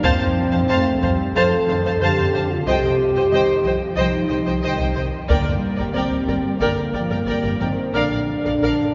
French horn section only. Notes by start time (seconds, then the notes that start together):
0.04 C4
1.35 A4
2.02 G4
2.51 F4
2.67 G4
3.96 D#4
5.28 A#3
5.93 C4
6.58 A#3
7.61 C4
7.95 D4